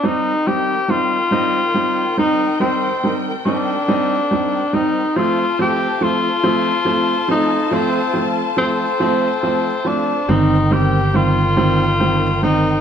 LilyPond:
<<
  \new Staff \with { instrumentName = "String section" } { \time 6/8 \key ees \lydian \tempo 4. = 47 << { <ees bes' g''>2.~ | <ees bes' g''>2. | <f' a' a''>2.~ | <f' a' a''>2. |
<ees bes' g''>2. | } \\ { c''2.~ | c''2.~ | c''2.~ | c''2.~ |
c''2. | } >> }
  \new Staff \with { instrumentName = "Tenor saxophone" } { \time 6/8 \key ees \lydian ees'8 g'8 f'4. ees'8 | c'8 r8 d'4. ees'8 | f'8 g'8 f'4. ees'8 | c'8 r8 c'4. d'8 |
ees'8 g'8 f'4. ees'8 | }
  \new Staff \with { instrumentName = "Grand piano" } { \time 6/8 \key ees \lydian <g c' ees'>8 <g c' ees'>8 <g c' ees'>8 <g c' ees'>8 <g c' ees'>8 <g c' ees'>8 | <g c' ees'>8 <g c' ees'>8 <g c' ees'>8 <g c' ees'>8 <g c' ees'>8 <g c' ees'>8 | <f a c'>8 <f a c'>8 <f a c'>8 <f a c'>8 <f a c'>8 <f a c'>8 | <f a c'>8 <f a c'>8 <f a c'>8 <f a c'>8 <f a c'>8 <f a c'>8 |
<ees g c'>8 <ees g c'>8 <ees g c'>8 <ees g c'>8 <ees g c'>8 <ees g c'>8 | }
  \new Staff \with { instrumentName = "Fingered electric bass" } { \clef bass \time 6/8 \key ees \lydian r2. | r2. | r2. | r2. |
g,,2. | }
>>